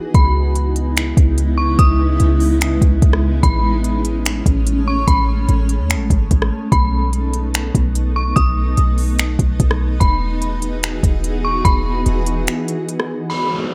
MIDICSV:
0, 0, Header, 1, 6, 480
1, 0, Start_track
1, 0, Key_signature, 4, "minor"
1, 0, Tempo, 410959
1, 169, Time_signature, 4, 2, 24, 8
1, 16052, End_track
2, 0, Start_track
2, 0, Title_t, "Synth bell"
2, 0, Program_c, 0, 98
2, 173, Note_on_c, 0, 83, 90
2, 622, Note_off_c, 0, 83, 0
2, 1840, Note_on_c, 0, 85, 75
2, 2072, Note_off_c, 0, 85, 0
2, 2087, Note_on_c, 0, 87, 96
2, 2539, Note_off_c, 0, 87, 0
2, 4008, Note_on_c, 0, 83, 100
2, 4460, Note_off_c, 0, 83, 0
2, 5695, Note_on_c, 0, 85, 80
2, 5920, Note_off_c, 0, 85, 0
2, 5928, Note_on_c, 0, 83, 104
2, 6380, Note_off_c, 0, 83, 0
2, 7848, Note_on_c, 0, 83, 85
2, 8299, Note_off_c, 0, 83, 0
2, 9532, Note_on_c, 0, 85, 83
2, 9759, Note_off_c, 0, 85, 0
2, 9763, Note_on_c, 0, 87, 103
2, 10217, Note_off_c, 0, 87, 0
2, 11684, Note_on_c, 0, 83, 96
2, 12138, Note_off_c, 0, 83, 0
2, 13369, Note_on_c, 0, 85, 87
2, 13597, Note_off_c, 0, 85, 0
2, 13605, Note_on_c, 0, 83, 108
2, 14058, Note_off_c, 0, 83, 0
2, 15531, Note_on_c, 0, 83, 86
2, 15982, Note_off_c, 0, 83, 0
2, 16052, End_track
3, 0, Start_track
3, 0, Title_t, "Ambient pad"
3, 0, Program_c, 1, 92
3, 0, Note_on_c, 1, 52, 84
3, 0, Note_on_c, 1, 59, 76
3, 0, Note_on_c, 1, 63, 91
3, 0, Note_on_c, 1, 66, 75
3, 0, Note_on_c, 1, 68, 93
3, 122, Note_off_c, 1, 59, 0
3, 122, Note_off_c, 1, 63, 0
3, 131, Note_off_c, 1, 52, 0
3, 131, Note_off_c, 1, 66, 0
3, 131, Note_off_c, 1, 68, 0
3, 169, Note_on_c, 1, 59, 74
3, 170, Note_on_c, 1, 56, 74
3, 171, Note_on_c, 1, 49, 80
3, 171, Note_on_c, 1, 63, 76
3, 171, Note_on_c, 1, 64, 86
3, 3971, Note_off_c, 1, 59, 0
3, 3971, Note_off_c, 1, 64, 0
3, 3972, Note_off_c, 1, 49, 0
3, 3972, Note_off_c, 1, 63, 0
3, 4008, Note_on_c, 1, 57, 77
3, 4009, Note_on_c, 1, 61, 91
3, 7803, Note_off_c, 1, 56, 0
3, 7811, Note_off_c, 1, 61, 0
3, 7846, Note_on_c, 1, 63, 93
3, 7847, Note_on_c, 1, 59, 77
3, 11642, Note_off_c, 1, 57, 0
3, 11689, Note_on_c, 1, 66, 75
3, 11689, Note_on_c, 1, 68, 92
3, 11690, Note_on_c, 1, 52, 83
3, 15481, Note_off_c, 1, 59, 0
3, 15481, Note_off_c, 1, 63, 0
3, 15491, Note_off_c, 1, 52, 0
3, 15491, Note_off_c, 1, 66, 0
3, 15491, Note_off_c, 1, 68, 0
3, 15532, Note_on_c, 1, 49, 80
3, 15532, Note_on_c, 1, 63, 76
3, 15533, Note_on_c, 1, 56, 75
3, 15534, Note_on_c, 1, 64, 74
3, 15534, Note_on_c, 1, 71, 86
3, 16052, Note_off_c, 1, 49, 0
3, 16052, Note_off_c, 1, 56, 0
3, 16052, Note_off_c, 1, 63, 0
3, 16052, Note_off_c, 1, 64, 0
3, 16052, Note_off_c, 1, 71, 0
3, 16052, End_track
4, 0, Start_track
4, 0, Title_t, "808-style bass"
4, 0, Program_c, 2, 38
4, 169, Note_on_c, 2, 37, 109
4, 1322, Note_off_c, 2, 37, 0
4, 1367, Note_on_c, 2, 37, 104
4, 2059, Note_off_c, 2, 37, 0
4, 2089, Note_on_c, 2, 37, 108
4, 2550, Note_off_c, 2, 37, 0
4, 2570, Note_on_c, 2, 37, 111
4, 3261, Note_off_c, 2, 37, 0
4, 3289, Note_on_c, 2, 37, 103
4, 3520, Note_off_c, 2, 37, 0
4, 3530, Note_on_c, 2, 37, 109
4, 3991, Note_off_c, 2, 37, 0
4, 4009, Note_on_c, 2, 33, 114
4, 5162, Note_off_c, 2, 33, 0
4, 5208, Note_on_c, 2, 33, 105
4, 5900, Note_off_c, 2, 33, 0
4, 5929, Note_on_c, 2, 33, 107
4, 6390, Note_off_c, 2, 33, 0
4, 6409, Note_on_c, 2, 33, 116
4, 6768, Note_on_c, 2, 40, 101
4, 6785, Note_off_c, 2, 33, 0
4, 6948, Note_on_c, 2, 33, 103
4, 6966, Note_off_c, 2, 40, 0
4, 7120, Note_off_c, 2, 33, 0
4, 7127, Note_on_c, 2, 32, 103
4, 7358, Note_off_c, 2, 32, 0
4, 7371, Note_on_c, 2, 33, 106
4, 7600, Note_off_c, 2, 33, 0
4, 7848, Note_on_c, 2, 35, 113
4, 9002, Note_off_c, 2, 35, 0
4, 9048, Note_on_c, 2, 35, 105
4, 9740, Note_off_c, 2, 35, 0
4, 9769, Note_on_c, 2, 35, 112
4, 10230, Note_off_c, 2, 35, 0
4, 10251, Note_on_c, 2, 35, 112
4, 10941, Note_off_c, 2, 35, 0
4, 10968, Note_on_c, 2, 35, 100
4, 11199, Note_off_c, 2, 35, 0
4, 11210, Note_on_c, 2, 35, 108
4, 11670, Note_off_c, 2, 35, 0
4, 11690, Note_on_c, 2, 28, 112
4, 12843, Note_off_c, 2, 28, 0
4, 12886, Note_on_c, 2, 28, 105
4, 13579, Note_off_c, 2, 28, 0
4, 13608, Note_on_c, 2, 28, 108
4, 14070, Note_off_c, 2, 28, 0
4, 14090, Note_on_c, 2, 28, 115
4, 14570, Note_off_c, 2, 28, 0
4, 16052, End_track
5, 0, Start_track
5, 0, Title_t, "Downlifter"
5, 0, Program_c, 3, 103
5, 15530, Note_on_c, 3, 60, 79
5, 16052, Note_off_c, 3, 60, 0
5, 16052, End_track
6, 0, Start_track
6, 0, Title_t, "Drums"
6, 169, Note_on_c, 9, 36, 110
6, 169, Note_on_c, 9, 42, 63
6, 285, Note_off_c, 9, 36, 0
6, 285, Note_off_c, 9, 42, 0
6, 648, Note_on_c, 9, 42, 66
6, 765, Note_off_c, 9, 42, 0
6, 887, Note_on_c, 9, 42, 77
6, 1003, Note_off_c, 9, 42, 0
6, 1129, Note_on_c, 9, 42, 74
6, 1139, Note_on_c, 9, 26, 113
6, 1246, Note_off_c, 9, 42, 0
6, 1256, Note_off_c, 9, 26, 0
6, 1367, Note_on_c, 9, 36, 93
6, 1372, Note_on_c, 9, 42, 80
6, 1484, Note_off_c, 9, 36, 0
6, 1489, Note_off_c, 9, 42, 0
6, 1609, Note_on_c, 9, 42, 72
6, 1726, Note_off_c, 9, 42, 0
6, 2089, Note_on_c, 9, 36, 106
6, 2089, Note_on_c, 9, 42, 64
6, 2205, Note_off_c, 9, 36, 0
6, 2206, Note_off_c, 9, 42, 0
6, 2567, Note_on_c, 9, 42, 68
6, 2684, Note_off_c, 9, 42, 0
6, 2807, Note_on_c, 9, 46, 60
6, 2924, Note_off_c, 9, 46, 0
6, 3049, Note_on_c, 9, 42, 76
6, 3059, Note_on_c, 9, 26, 117
6, 3166, Note_off_c, 9, 42, 0
6, 3176, Note_off_c, 9, 26, 0
6, 3288, Note_on_c, 9, 36, 92
6, 3293, Note_on_c, 9, 42, 74
6, 3405, Note_off_c, 9, 36, 0
6, 3410, Note_off_c, 9, 42, 0
6, 3530, Note_on_c, 9, 36, 95
6, 3530, Note_on_c, 9, 42, 73
6, 3647, Note_off_c, 9, 36, 0
6, 3647, Note_off_c, 9, 42, 0
6, 3659, Note_on_c, 9, 37, 103
6, 3776, Note_off_c, 9, 37, 0
6, 4009, Note_on_c, 9, 36, 111
6, 4010, Note_on_c, 9, 42, 64
6, 4126, Note_off_c, 9, 36, 0
6, 4127, Note_off_c, 9, 42, 0
6, 4489, Note_on_c, 9, 42, 64
6, 4605, Note_off_c, 9, 42, 0
6, 4727, Note_on_c, 9, 42, 79
6, 4844, Note_off_c, 9, 42, 0
6, 4970, Note_on_c, 9, 42, 72
6, 4980, Note_on_c, 9, 26, 115
6, 5087, Note_off_c, 9, 42, 0
6, 5097, Note_off_c, 9, 26, 0
6, 5208, Note_on_c, 9, 36, 94
6, 5213, Note_on_c, 9, 42, 76
6, 5325, Note_off_c, 9, 36, 0
6, 5330, Note_off_c, 9, 42, 0
6, 5450, Note_on_c, 9, 42, 77
6, 5567, Note_off_c, 9, 42, 0
6, 5929, Note_on_c, 9, 36, 109
6, 5929, Note_on_c, 9, 42, 66
6, 6046, Note_off_c, 9, 36, 0
6, 6046, Note_off_c, 9, 42, 0
6, 6408, Note_on_c, 9, 42, 66
6, 6525, Note_off_c, 9, 42, 0
6, 6647, Note_on_c, 9, 42, 74
6, 6764, Note_off_c, 9, 42, 0
6, 6889, Note_on_c, 9, 42, 74
6, 6899, Note_on_c, 9, 26, 117
6, 7006, Note_off_c, 9, 42, 0
6, 7016, Note_off_c, 9, 26, 0
6, 7128, Note_on_c, 9, 36, 93
6, 7131, Note_on_c, 9, 42, 72
6, 7245, Note_off_c, 9, 36, 0
6, 7248, Note_off_c, 9, 42, 0
6, 7369, Note_on_c, 9, 42, 73
6, 7370, Note_on_c, 9, 36, 93
6, 7486, Note_off_c, 9, 42, 0
6, 7487, Note_off_c, 9, 36, 0
6, 7499, Note_on_c, 9, 37, 103
6, 7616, Note_off_c, 9, 37, 0
6, 7849, Note_on_c, 9, 36, 117
6, 7850, Note_on_c, 9, 42, 64
6, 7966, Note_off_c, 9, 36, 0
6, 7967, Note_off_c, 9, 42, 0
6, 8328, Note_on_c, 9, 42, 65
6, 8445, Note_off_c, 9, 42, 0
6, 8567, Note_on_c, 9, 42, 80
6, 8684, Note_off_c, 9, 42, 0
6, 8809, Note_on_c, 9, 42, 74
6, 8819, Note_on_c, 9, 26, 112
6, 8926, Note_off_c, 9, 42, 0
6, 8936, Note_off_c, 9, 26, 0
6, 9048, Note_on_c, 9, 36, 94
6, 9052, Note_on_c, 9, 42, 77
6, 9165, Note_off_c, 9, 36, 0
6, 9169, Note_off_c, 9, 42, 0
6, 9290, Note_on_c, 9, 42, 73
6, 9406, Note_off_c, 9, 42, 0
6, 9770, Note_on_c, 9, 36, 110
6, 9770, Note_on_c, 9, 42, 64
6, 9886, Note_off_c, 9, 36, 0
6, 9887, Note_off_c, 9, 42, 0
6, 10247, Note_on_c, 9, 42, 66
6, 10364, Note_off_c, 9, 42, 0
6, 10487, Note_on_c, 9, 46, 61
6, 10604, Note_off_c, 9, 46, 0
6, 10729, Note_on_c, 9, 42, 76
6, 10739, Note_on_c, 9, 26, 113
6, 10846, Note_off_c, 9, 42, 0
6, 10856, Note_off_c, 9, 26, 0
6, 10968, Note_on_c, 9, 36, 96
6, 10972, Note_on_c, 9, 42, 77
6, 11085, Note_off_c, 9, 36, 0
6, 11089, Note_off_c, 9, 42, 0
6, 11210, Note_on_c, 9, 36, 94
6, 11210, Note_on_c, 9, 42, 73
6, 11327, Note_off_c, 9, 36, 0
6, 11327, Note_off_c, 9, 42, 0
6, 11338, Note_on_c, 9, 37, 104
6, 11455, Note_off_c, 9, 37, 0
6, 11689, Note_on_c, 9, 36, 107
6, 11689, Note_on_c, 9, 42, 66
6, 11806, Note_off_c, 9, 36, 0
6, 11806, Note_off_c, 9, 42, 0
6, 12167, Note_on_c, 9, 42, 66
6, 12284, Note_off_c, 9, 42, 0
6, 12406, Note_on_c, 9, 42, 76
6, 12522, Note_off_c, 9, 42, 0
6, 12649, Note_on_c, 9, 42, 77
6, 12659, Note_on_c, 9, 26, 117
6, 12766, Note_off_c, 9, 42, 0
6, 12776, Note_off_c, 9, 26, 0
6, 12887, Note_on_c, 9, 36, 90
6, 12891, Note_on_c, 9, 42, 77
6, 13004, Note_off_c, 9, 36, 0
6, 13008, Note_off_c, 9, 42, 0
6, 13129, Note_on_c, 9, 42, 71
6, 13245, Note_off_c, 9, 42, 0
6, 13608, Note_on_c, 9, 36, 111
6, 13609, Note_on_c, 9, 42, 68
6, 13725, Note_off_c, 9, 36, 0
6, 13725, Note_off_c, 9, 42, 0
6, 14086, Note_on_c, 9, 42, 64
6, 14203, Note_off_c, 9, 42, 0
6, 14325, Note_on_c, 9, 42, 80
6, 14442, Note_off_c, 9, 42, 0
6, 14568, Note_on_c, 9, 42, 77
6, 14578, Note_on_c, 9, 26, 115
6, 14684, Note_off_c, 9, 42, 0
6, 14695, Note_off_c, 9, 26, 0
6, 14813, Note_on_c, 9, 42, 73
6, 14929, Note_off_c, 9, 42, 0
6, 15050, Note_on_c, 9, 42, 73
6, 15167, Note_off_c, 9, 42, 0
6, 15179, Note_on_c, 9, 37, 105
6, 15296, Note_off_c, 9, 37, 0
6, 16052, End_track
0, 0, End_of_file